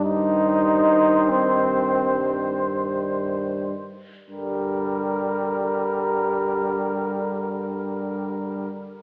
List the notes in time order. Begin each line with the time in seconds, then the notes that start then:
Already playing: G2 G3
0.04 D#3 D#4 C5
1.29 C4
4.29 G2 D3 G3 A#4